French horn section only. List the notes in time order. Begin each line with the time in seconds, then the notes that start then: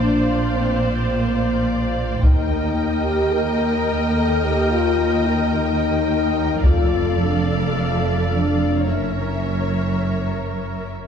0.01 D4
0.56 C4
1.14 A#3
2.23 D#4
3.05 G4
3.32 A#4
4.16 A4
4.45 G4
4.71 F4
5.26 D#4
6.65 F4
7.21 D4
7.63 A#3
7.76 A3
8.31 D4
8.86 C#4